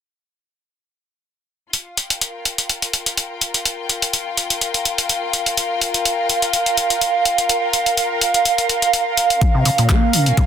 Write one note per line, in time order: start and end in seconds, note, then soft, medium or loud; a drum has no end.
1.73 10.10 F4 medium
1.73 10.46 F5 medium
1.73 closed hi-hat medium
1.97 9.41 G5 medium
1.97 closed hi-hat medium
2.10 closed hi-hat soft
2.15 10.46 A#4 medium
2.21 closed hi-hat medium
2.45 closed hi-hat medium
2.58 closed hi-hat soft
2.69 closed hi-hat medium
2.82 closed hi-hat soft
2.93 closed hi-hat medium
3.06 closed hi-hat soft
3.17 closed hi-hat medium
3.41 closed hi-hat medium
3.54 closed hi-hat soft
3.65 closed hi-hat medium
3.89 closed hi-hat medium
4.02 closed hi-hat soft
4.13 closed hi-hat medium
4.37 closed hi-hat medium
4.50 closed hi-hat soft
4.61 closed hi-hat medium
4.74 closed hi-hat soft
4.85 closed hi-hat medium
4.98 closed hi-hat soft
5.09 closed hi-hat medium
5.33 closed hi-hat medium
5.46 closed hi-hat soft
5.57 closed hi-hat medium
5.81 closed hi-hat medium
5.94 closed hi-hat soft
6.05 closed hi-hat medium
6.29 closed hi-hat medium
6.42 closed hi-hat soft
6.53 closed hi-hat medium
6.66 closed hi-hat soft
6.77 closed hi-hat medium
6.90 closed hi-hat soft
7.01 closed hi-hat medium
7.25 closed hi-hat medium
7.38 closed hi-hat soft
7.49 closed hi-hat medium
7.73 closed hi-hat medium
7.86 closed hi-hat soft
7.97 closed hi-hat medium
8.21 closed hi-hat medium
8.34 closed hi-hat soft
8.45 closed hi-hat medium
8.58 closed hi-hat soft
8.69 closed hi-hat medium
8.82 closed hi-hat soft
8.93 closed hi-hat medium
9.17 closed hi-hat medium
9.30 closed hi-hat soft
9.41 10.46 C#4 medium
9.41 kick loud
9.41 closed hi-hat medium
9.54 9.64 C3 medium
9.65 9.70 C3 medium
9.65 open hi-hat loud
9.78 9.91 A#2 medium
9.78 closed hi-hat soft
9.89 10.15 A#3 medium
9.89 kick loud
9.89 clap loud
9.89 closed hi-hat medium
10.13 10.28 C#3 medium
10.13 open hi-hat medium
10.21 10.46 G#5 medium
10.26 10.32 A#2 loud
10.26 closed hi-hat soft
10.37 10.42 A#2 medium
10.37 kick loud
10.37 closed hi-hat medium